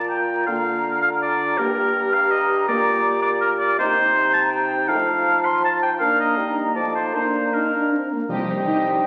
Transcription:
0.00 0.42 A#2 soft
0.00 1.53 F4 soft
0.00 1.53 A#5 soft
0.09 0.46 G5 medium
0.46 1.59 D3 soft
0.46 0.60 A#3 soft
0.46 0.60 F4 soft
0.46 1.01 F5 medium
1.02 1.10 F5 medium
1.22 1.59 D5 medium
1.58 2.68 G2 medium
1.58 1.72 A#3 medium
1.58 3.75 G4 medium
1.58 1.71 G4 soft
1.58 2.15 A#4 medium
1.58 3.48 A#5 medium
2.14 2.32 F5 medium
2.31 2.68 D#5 medium
2.68 3.77 A#2 medium
2.68 2.81 A#3 medium
2.68 2.81 G4 medium
2.68 3.21 D5 medium
3.22 3.31 D5 medium
3.41 3.50 A#4 medium
3.59 3.78 D5 medium
3.78 4.91 C3 medium
3.78 3.92 A#3 medium
3.78 3.91 D#4 medium
3.78 5.97 D#4 medium
3.78 4.33 C5 medium
3.78 4.90 A#5 medium
4.33 4.42 A5 medium
4.50 4.90 G5 medium
4.88 5.99 F3 medium
4.88 5.02 A3 medium
4.88 5.02 D#4 medium
4.88 5.46 F5 medium
4.88 6.00 A5 medium
5.45 5.63 C6 medium
5.65 5.73 A5 medium
5.82 5.91 G5 medium
5.99 6.39 A#3 medium
5.99 6.36 A#3 soft
5.99 6.36 D4 soft
5.99 6.18 F5 medium
5.99 6.35 A#5 soft
6.20 6.55 D#5 medium
6.37 6.75 G3 soft
6.37 6.76 A#3 soft
6.37 6.75 D#4 soft
6.37 6.76 A#5 soft
6.75 7.16 F3 soft
6.75 7.14 A3 soft
6.75 7.14 D#4 soft
6.75 7.17 D#4 soft
6.75 6.94 D5 medium
6.75 7.15 A5 soft
6.95 7.14 C5 soft
7.14 8.11 A#3 soft
7.14 7.53 A#3 soft
7.14 7.53 D4 soft
7.14 7.52 D4 soft
7.14 7.55 C5 medium
7.14 7.52 A#5 soft
7.53 8.10 D4 soft
7.53 7.72 D#4 soft
7.53 7.92 A#4 soft
7.53 8.10 A#5 soft
7.73 7.92 D4 soft
7.92 8.11 C4 soft
8.13 8.21 A#3 soft
8.29 8.63 C2 soft
8.29 8.82 C3 medium
8.29 8.42 F3 medium
8.29 9.07 G3 soft
8.29 8.48 D#4 soft
8.29 8.48 G4 soft
8.29 9.07 C5 soft
8.29 9.07 D#5 soft
8.29 8.48 D#5 soft
8.29 9.07 G5 soft
8.48 8.68 D#4 soft
8.48 8.68 G4 soft
8.48 8.68 C5 soft
8.60 8.68 D#3 soft
8.67 9.01 C2 soft
8.67 8.86 D#4 soft
8.67 8.95 D#4 medium
8.67 8.87 G4 soft
8.67 8.86 D#5 soft
8.86 9.05 D#4 soft
8.86 9.05 G4 soft
8.86 9.05 C5 soft
8.96 9.00 D4 medium

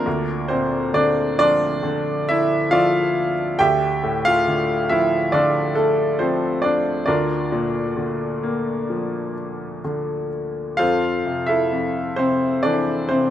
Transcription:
0.00 0.46 A#3 medium
0.00 0.46 D4 medium
0.00 0.46 F4 medium
0.00 0.52 A#4 medium
0.06 3.55 D2 medium
0.48 2.24 A#2 soft
0.48 0.91 C4 medium
0.48 0.95 C5 medium
0.94 1.82 D3 soft
0.94 1.37 D4 medium
0.94 1.37 D5 medium
1.39 2.70 F3 medium
1.39 2.25 D4 medium
1.39 2.25 F4 medium
1.39 2.31 D5 loud
1.83 3.55 D3 medium
2.29 2.70 E4 medium
2.29 2.73 E5 medium
2.71 3.56 F3 medium
2.71 3.34 F4 medium
2.71 3.34 D5 medium
2.71 3.33 F5 medium
3.59 7.03 D2 medium
3.59 4.22 G4 medium
3.59 4.22 E5 medium
3.59 4.21 G5 loud
4.03 5.72 A2 medium
4.25 4.87 F4 medium
4.25 4.87 A4 medium
4.25 4.86 F5 loud
4.48 5.32 D3 soft
4.89 6.19 F3 medium
4.89 5.31 E4 medium
4.89 5.34 E5 medium
5.32 7.03 D3 medium
5.32 5.74 D4 medium
5.32 5.74 F4 medium
5.32 5.74 A4 medium
5.32 5.73 D5 medium
5.75 6.18 A3 medium
5.75 6.20 A4 medium
6.19 7.05 F3 soft
6.19 6.61 C4 medium
6.19 6.64 C5 medium
6.62 7.05 D4 medium
6.62 7.04 D5 medium
7.06 10.75 D2 medium
7.06 9.81 D4 medium
7.06 9.81 F4 medium
7.06 9.81 A#4 medium
7.06 9.80 D5 medium
7.52 9.33 A#2 medium
7.97 9.81 D3 soft
8.43 10.28 A#3 soft
8.90 10.75 F3 soft
9.85 10.76 D3 soft
10.77 11.71 F2 soft
10.77 11.45 F4 medium
10.77 11.45 A4 medium
10.77 11.45 C5 medium
10.77 11.50 F5 medium
11.26 12.16 C3 soft
11.46 12.14 E4 medium
11.46 12.14 A4 medium
11.46 12.19 E5 medium
11.72 13.30 F2 soft
12.16 13.09 C3 soft
12.16 12.61 C4 medium
12.16 12.65 C5 medium
12.63 13.30 E3 soft
12.63 13.07 D4 medium
12.63 13.06 A4 soft
12.63 13.10 D5 medium
13.09 13.30 C3 soft
13.09 13.30 C4 medium
13.09 13.30 C5 medium

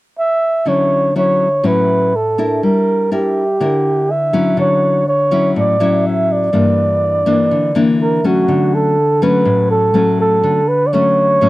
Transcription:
0.19 0.70 E5 medium
0.65 1.61 D3 medium
0.65 1.11 F#3 soft
0.65 1.11 C#4 soft
0.65 1.11 E4 soft
0.65 1.16 C#5 medium
1.16 1.47 F#3 medium
1.16 1.47 C#4 soft
1.16 1.47 E4 medium
1.16 1.68 C#5 medium
1.63 2.59 A2 medium
1.63 2.12 F#3 medium
1.63 2.12 C#4 soft
1.63 2.13 E4 soft
1.63 2.17 B4 medium
2.16 2.66 A4 medium
2.38 3.07 D4 medium
2.38 3.07 E4 medium
2.38 3.07 A#4 medium
2.63 3.58 G3 medium
2.63 3.12 A#4 medium
3.11 3.42 D4 soft
3.11 3.43 E4 soft
3.11 4.13 G4 medium
3.11 3.43 A#4 medium
3.60 4.55 D3 medium
3.60 4.29 D4 medium
3.60 4.29 E4 medium
3.60 4.30 A#4 soft
4.11 4.59 E5 medium
4.33 5.02 F#3 medium
4.33 5.03 C#4 medium
4.33 5.03 E4 medium
4.57 5.52 D3 medium
4.57 5.04 C#5 medium
5.08 5.53 C#5 medium
5.31 5.76 F#3 medium
5.31 5.76 C#4 medium
5.31 5.76 E4 medium
5.56 6.51 A2 medium
5.56 6.08 D5 medium
5.80 6.49 F#3 medium
5.80 6.49 C#4 medium
5.80 6.50 E4 medium
6.07 6.34 E5 medium
6.32 7.84 D5 medium
6.53 7.48 G2 medium
6.53 7.22 E3 soft
6.53 7.22 A#3 soft
6.53 7.23 D4 medium
7.26 7.71 E3 medium
7.26 7.71 A#3 medium
7.26 7.71 D4 medium
7.51 8.46 D3 medium
7.75 8.20 E3 medium
7.75 8.20 A#3 medium
7.75 8.20 D4 medium
8.01 8.28 A#4 medium
8.24 8.95 F#3 medium
8.24 8.95 A3 medium
8.24 8.96 C#4 medium
8.24 8.76 F#4 medium
8.48 9.43 D3 medium
8.74 9.25 A4 medium
9.22 9.91 F#3 medium
9.22 9.91 A3 medium
9.22 9.91 C#4 medium
9.22 9.70 B4 medium
9.45 10.41 A2 medium
9.71 10.16 A4 medium
9.94 10.60 F#3 medium
9.94 10.60 A3 medium
9.94 10.60 C#4 medium
10.21 10.70 A4 medium
10.43 11.39 D3 medium
10.68 10.89 B4 medium
10.87 10.94 D5 medium
10.93 11.37 F#3 medium
10.93 11.38 A3 medium
10.93 11.38 C#4 medium
10.93 11.49 C#5 loud
11.41 11.49 A2 medium
11.41 11.49 F#3 soft
11.41 11.49 A3 soft
11.41 11.49 C#4 medium

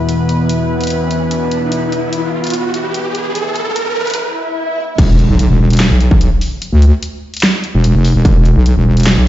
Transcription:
0.00 4.94 E2 medium
0.00 4.94 B2 medium
0.00 4.94 B3 medium
0.00 4.94 E4 medium
0.00 4.94 B4 medium
0.00 riser medium
0.09 closed hi-hat medium
0.29 closed hi-hat medium
0.49 closed hi-hat medium
0.81 closed hi-hat soft
0.83 closed hi-hat medium
0.87 closed hi-hat medium
0.90 closed hi-hat medium
1.11 closed hi-hat medium
1.31 closed hi-hat medium
1.51 closed hi-hat medium
1.72 closed hi-hat medium
1.92 closed hi-hat medium
2.13 closed hi-hat medium
2.44 closed hi-hat soft
2.47 closed hi-hat medium
2.50 closed hi-hat medium
2.54 closed hi-hat medium
2.74 closed hi-hat medium
2.94 closed hi-hat medium
3.15 closed hi-hat medium
3.35 closed hi-hat medium
3.56 closed hi-hat soft
3.76 closed hi-hat medium
4.07 closed hi-hat soft
4.10 closed hi-hat medium
4.14 closed hi-hat medium
4.14 swell medium
4.98 5.28 E1 medium
4.98 kick loud
4.98 closed hi-hat medium
4.98 crash loud
4.98 impact medium
5.19 closed hi-hat medium
5.29 5.48 B1 loud
5.39 closed hi-hat medium
5.50 5.89 E1 loud
5.70 closed hi-hat medium
5.73 closed hi-hat medium
5.77 snare loud
5.77 clap medium
5.77 closed hi-hat medium
5.80 closed hi-hat medium
5.91 6.30 B1 loud
6.01 closed hi-hat medium
6.11 kick loud
6.21 closed hi-hat medium
6.41 open hi-hat medium
6.62 closed hi-hat medium
6.72 6.91 D2 medium
6.82 closed hi-hat medium
7.03 closed hi-hat medium
7.34 closed hi-hat soft
7.37 closed hi-hat medium
7.40 snare loud
7.40 clap medium
7.40 closed hi-hat medium
7.43 closed hi-hat medium
7.64 closed hi-hat medium
7.74 7.93 E1 loud
7.84 closed hi-hat medium
7.95 8.14 F1 loud
8.05 open hi-hat medium
8.15 8.23 E1 loud
8.25 8.54 E1 loud
8.25 kick loud
8.25 closed hi-hat medium
8.45 closed hi-hat medium
8.56 8.75 B1 loud
8.66 closed hi-hat medium
8.76 9.16 E1 loud
8.97 closed hi-hat soft
9.00 closed hi-hat medium
9.03 snare loud
9.03 clap medium
9.03 closed hi-hat medium
9.07 closed hi-hat medium
9.17 9.28 B1 loud

